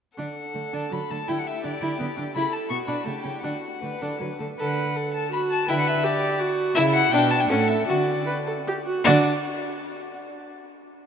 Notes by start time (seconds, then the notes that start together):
0.17 D3 D4 A4 F#5
0.55 D3 A3
0.73 D3 D4 A5
0.91 D3 F#3 B5
1.10 D3 A3 A5
1.27 D3 E4 G4 G5
1.39 F#5
1.47 E5
1.64 D3 D4 D5
1.81 D3 E4
1.99 D3 B3
2.17 D3 D4
2.35 C#3 E4 A4 B5
2.53 A5
2.69 B2 B3 F#4 C#6
2.87 B2 D4 B5
3.04 C#3 A3 G4 A5
3.22 C#3 C#4 G5
3.42 D3 D4 F#4 F#5
3.82 D3 A3 B4
4.02 D3 D4 A4
4.20 D3 F#3 B4
4.40 D3 A3 A4
4.59 D3 A4 B4 F#5
4.96 A4
5.14 A5
5.32 F#4 B5
5.51 A5
5.68 D3 E4 B4 G5
5.79 F#5
5.87 E5
6.04 G4 D5
6.40 F#4
6.75 C#3 E4 E5
6.94 F#5
7.12 B2 D4 G5
7.31 A5
7.41 G5
7.49 A2 C#4 A4 F#5
7.68 E5
7.87 D3 F#4 D5
8.26 B4
8.47 A4
8.68 G4
8.86 F#4
9.04 D3 D4 F#4 D5